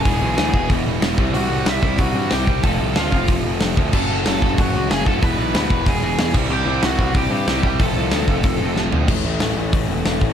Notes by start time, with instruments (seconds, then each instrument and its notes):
0.02 picked electric bass E1, overdriven electric guitar E2 E3, lead electric guitar G#4 G#5, kick, open hi-hat
0.06 overdriven electric guitar B2 E3 G#3 B3 E4
0.21 picked electric bass B1, overdriven electric guitar E2 B2 E3
0.36 picked electric bass D2, overdriven electric guitar E2 B2 E3, lead electric guitar G#4 G#5, snare, open hi-hat
0.54 picked electric bass E1, overdriven electric guitar E2 B2 E3, kick
0.69 picked electric bass E1, overdriven electric guitar E2 B2 E3, kick, open hi-hat
0.86 picked electric bass E1, overdriven electric guitar E2 B2 E3
1.01 picked electric bass E1, overdriven electric guitar E2 B2 E3, snare, open hi-hat
1.17 picked electric bass C2, overdriven electric guitar C3 E3 G3 C4 E4, kick
1.34 picked electric bass C2, overdriven electric guitar C3 G3 C4, lead electric guitar F#4 F#5, open hi-hat
1.49 picked electric bass C2, overdriven electric guitar C3 G3 C4
1.66 picked electric bass C2, overdriven electric guitar C3 G3 C4, lead electric guitar E4 E5, snare, open hi-hat
1.83 picked electric bass C2, overdriven electric guitar C3 G3 C4, kick
1.98 picked electric bass C2, overdriven electric guitar C3 G3 C4, lead electric guitar F#4 F#5, kick, open hi-hat
2.15 picked electric bass G2, overdriven electric guitar C3 G3 C4
2.31 picked electric bass C2, overdriven electric guitar C3 E3 G3 C4 E4, lead electric guitar G4 G5, snare, open hi-hat
2.47 picked electric bass C2, overdriven electric guitar C3 G3 C4, kick
2.63 picked electric bass F1, overdriven electric guitar F2 C3 F3 A3 C4 F4, lead electric guitar A4 A5, kick, open hi-hat
2.80 picked electric bass C2, overdriven electric guitar F2 C3 F3
2.96 picked electric bass D2, overdriven electric guitar F2 C3 F3, lead electric guitar F4 F5, snare, open hi-hat
3.12 picked electric bass F1, overdriven electric guitar F2 C3 F3, kick
3.28 picked electric bass F1, overdriven electric guitar F2 C3 F3, kick, open hi-hat
3.45 picked electric bass F1, overdriven electric guitar F2 C3 F3
3.60 picked electric bass F1, overdriven electric guitar F2 C3 F3, snare, open hi-hat
3.77 picked electric bass D2, overdriven electric guitar F2 C3 F3 A3 C4 F4, kick
3.93 picked electric bass F#1, overdriven electric guitar F#2 C#3 F#3 A3 C#4 F#4, lead electric guitar A4 A5, kick, crash
4.10 picked electric bass F#1, overdriven electric guitar F#2 C#3 F#3
4.25 picked electric bass F#1, overdriven electric guitar F#2 C#3 F#3, lead electric guitar A4 A5, snare, open hi-hat
4.42 picked electric bass F#1, overdriven electric guitar F#2 C#3 F#3, kick
4.58 picked electric bass F#1, overdriven electric guitar F#2 C#3 F#3, lead electric guitar F#4 F#5, kick, open hi-hat
4.75 picked electric bass C#2, overdriven electric guitar F#2 C#3 F#3
4.89 picked electric bass F#1, overdriven electric guitar F#2 C#3 F#3, lead electric guitar G#4 G#5, snare, open hi-hat
5.05 picked electric bass F#1, overdriven electric guitar F#2 C#3 F#3 A3 C#4 F#4, lead electric guitar A4 A5, kick
5.22 picked electric bass E1, overdriven electric guitar E2 B2 E3 G#3 B3 E4, lead electric guitar B4 B5, kick, open hi-hat
5.37 picked electric bass B1, overdriven electric guitar E2 B2 E3
5.54 picked electric bass D2, overdriven electric guitar E2 B2 E3, lead electric guitar B4 B5, snare, open hi-hat
5.69 picked electric bass E1, overdriven electric guitar E2 B2 E3, kick
5.86 picked electric bass E1, overdriven electric guitar E2 B2 E3, lead electric guitar G#4 G#5, kick, open hi-hat
6.01 picked electric bass E1, overdriven electric guitar E2 B2 E3
6.17 picked electric bass E1, overdriven electric guitar E2 B2 E3, snare, open hi-hat
6.34 picked electric bass C2, overdriven electric guitar C3 E3 G3 C4 E4, kick, crash
6.49 picked electric bass C2, overdriven electric guitar C3 G3 C4, lead electric guitar G4 G5
6.66 picked electric bass C2, overdriven electric guitar C3 G3 C4
6.82 picked electric bass C2, overdriven electric guitar C3 G3 C4, lead electric guitar F#4 F#5, snare, open hi-hat
6.99 picked electric bass C2, overdriven electric guitar C3 G3 C4, kick
7.14 picked electric bass C2, overdriven electric guitar C3 G3 C4, lead electric guitar G4 G5, kick, open hi-hat
7.31 picked electric bass G2, overdriven electric guitar C3 G3 C4
7.47 picked electric bass C2, overdriven electric guitar C3 E3 G3 C4 E4, snare, open hi-hat
7.63 picked electric bass C2, overdriven electric guitar C3 G3 C4, lead electric guitar G4 G5, kick
7.80 picked electric bass F1, overdriven electric guitar F2 C3 F3 A3 C4 F4, lead electric guitar A4 A5, kick, open hi-hat
7.95 picked electric bass C2, overdriven electric guitar F2 C3 F3
8.11 picked electric bass D2, overdriven electric guitar F2 C3 F3, snare, open hi-hat
8.28 picked electric bass F1, overdriven electric guitar F2 C3 F3, kick
8.43 picked electric bass F1, overdriven electric guitar F2 C3 F3, kick, open hi-hat
8.60 picked electric bass F1, overdriven electric guitar F2 C3 F3
8.76 picked electric bass F1, overdriven electric guitar F2 C3 F3, snare
8.92 picked electric bass D2, overdriven electric guitar F2 C3 F3 A3 C4 F4, floor tom
9.08 picked electric bass A1, overdriven electric guitar A2 E3 A3 C#4 E4, kick, crash
9.25 picked electric bass A1, overdriven electric guitar A2 E3 A3 C#4 E4
9.40 picked electric bass A1, overdriven electric guitar A2 E3 A3 C#4 E4, snare, open hi-hat
9.56 picked electric bass A1, overdriven electric guitar A2 E3 A3 C#4 E4
9.72 picked electric bass A1, overdriven electric guitar A2 E3 A3 C#4 E4, kick, open hi-hat
9.88 picked electric bass E1, overdriven electric guitar A2 E3 A3 C#4 E4
10.05 picked electric bass E1, overdriven electric guitar A2 E3 A3 C#4 E4, snare, open hi-hat
10.21 picked electric bass A1, overdriven electric guitar A2 E3 A3 C#4 E4, kick